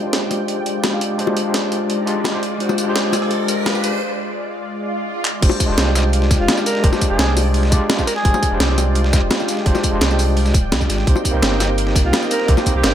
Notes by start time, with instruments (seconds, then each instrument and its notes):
Already playing: analog synth pad G#3 F4 D5 G5, riser
0.01 tine electric piano G#3 D4 F4
0.06 tine electric piano G4 C5
0.13 snare, closed hi-hat
0.31 closed hi-hat, high bongo
0.48 closed hi-hat
0.66 closed hi-hat
0.84 snare, closed hi-hat, high bongo
0.91 tine electric piano G#3 D4 F4 G4 F5
1.01 closed hi-hat
1.17 tine electric piano G#3 D4 F4 G4 C5, closed hi-hat
1.27 high bongo
1.37 closed hi-hat
1.43 tine electric piano G#3 D4 F4
1.47 tine electric piano G4 C5
1.54 snare, closed hi-hat
1.72 closed hi-hat
1.90 closed hi-hat
2.06 tine electric piano G#3 D4 F4 G4 D5, closed hi-hat
2.24 snare, closed hi-hat, high bongo
2.32 tine electric piano G#3 D4 F4 G4 C5
2.43 closed hi-hat
2.59 tine electric piano G#3 D4 F4 G4 C5, closed hi-hat
2.69 tambourine, high bongo
2.78 closed hi-hat, tambourine
2.84 tine electric piano G#3 D4 F4
2.88 tine electric piano G4 C5
2.96 snare, closed hi-hat
3.13 cross-stick, closed hi-hat, tambourine, high bongo
3.22 cross-stick
3.31 closed hi-hat
3.48 closed hi-hat, tambourine
3.66 snare, closed hi-hat, high bongo
3.73 tine electric piano G#3 D4 F4 G4 F5, tambourine
3.84 closed hi-hat, tambourine
4.72 swell
5.25 clap
5.41 sub bass F1, tine electric piano G#3 D4 F4 G4 C5, analog synth pad G#3 F4 D5 G5, kick, closed hi-hat, crash
5.49 tambourine, high bongo
5.60 kick, closed hi-hat, tambourine
5.66 sub bass F1, tine electric piano G#3 D4 F4
5.71 tine electric piano G4 C5
5.78 sub bass C2, snare, closed hi-hat
5.87 cross-stick
5.95 cross-stick, snare, closed hi-hat, tambourine
6.13 closed hi-hat
6.22 snare
6.31 kick, snare, closed hi-hat, tambourine
6.39 sub bass F1, alto saxophone F4
6.48 snare, closed hi-hat, high bongo
6.56 tine electric piano G#3 D4 F4 G4 F5, tambourine
6.66 alto saxophone A#4, snare, closed hi-hat, tambourine
6.75 snare
6.82 sub bass F1, tine electric piano G#3 D4 F4 G4 C5, kick, closed hi-hat
6.93 snare, tambourine, high bongo
7.01 kick, closed hi-hat, tambourine
7.07 sub bass F1, tine electric piano G#3 D4 F4, alto saxophone G#4
7.12 tine electric piano G4 C5
7.19 sub bass C2, snare, closed hi-hat
7.37 closed hi-hat, open hi-hat, tambourine, high bongo
7.54 closed hi-hat, open hi-hat
7.63 snare
7.70 tine electric piano G#3 D4 F4 G4 D5, kick, closed hi-hat, tambourine
7.89 snare, closed hi-hat, high bongo
7.97 tine electric piano G#3 D4 F4 G4 C5, kick, tambourine
8.07 alto saxophone A#4, snare, closed hi-hat, tambourine
8.16 alto saxophone G#4, snare
8.24 sub bass F1, tine electric piano G#3 D4 F4 G4 C5, kick, closed hi-hat
8.34 tambourine, high bongo
8.43 kick, closed hi-hat, tambourine
8.48 sub bass F1, tine electric piano G#3 D4 F4
8.53 tine electric piano G4 C5
8.60 sub bass C2, snare, closed hi-hat
8.69 cross-stick
8.78 cross-stick, closed hi-hat, tambourine, high bongo
8.95 closed hi-hat
9.04 snare
9.13 kick, snare, closed hi-hat, tambourine
9.22 sub bass F1
9.31 snare, closed hi-hat, high bongo
9.38 tine electric piano G#3 D4 F4 G4 F5, tambourine
9.48 snare, closed hi-hat, tambourine
9.57 snare
9.64 sub bass F1, tine electric piano G#3 D4 F4 G4 C5, kick, closed hi-hat
9.75 snare, tambourine, high bongo
9.83 kick, closed hi-hat, tambourine
9.90 sub bass F1, tine electric piano G#3 D4 F4
9.94 tine electric piano G4 C5
10.01 sub bass C2, snare, closed hi-hat
10.11 tambourine
10.19 closed hi-hat, open hi-hat, tambourine
10.37 closed hi-hat, open hi-hat
10.46 snare, tambourine
10.54 sub bass D1, kick, closed hi-hat, tambourine
10.72 sub bass C2, snare, closed hi-hat, high bongo
10.79 tine electric piano G#3 D4 F4 G4 D5, kick, tambourine
10.89 sub bass G#1, snare, closed hi-hat, tambourine
10.98 snare
11.06 sub bass C2, tine electric piano A#3 C4 D#4 G4 C5, analog synth pad D#4 A#4 C5, kick, closed hi-hat
11.16 tambourine, high bongo
11.25 kick, closed hi-hat, tambourine
11.31 sub bass C2, tine electric piano A#3 C4 D#4
11.35 tine electric piano G4 C5
11.42 sub bass G1, snare, closed hi-hat
11.52 cross-stick
11.60 cross-stick, snare, closed hi-hat, tambourine, high bongo
11.78 closed hi-hat
11.87 snare
11.96 kick, snare, closed hi-hat, tambourine
12.04 sub bass C2, alto saxophone F4
12.13 snare, closed hi-hat, high bongo
12.20 tine electric piano A#3 C4 D#4 G4 D#5, tambourine
12.31 alto saxophone A#4, snare, closed hi-hat, tambourine
12.40 snare
12.47 sub bass C2, tine electric piano A#3 C4 D#4 G4 C5, kick, closed hi-hat
12.57 snare, tambourine, high bongo
12.66 kick, closed hi-hat, tambourine
12.72 sub bass C2, tine electric piano A#3 C4 D#4, alto saxophone G4
12.77 tine electric piano G4 C5
12.84 sub bass G1, snare, closed hi-hat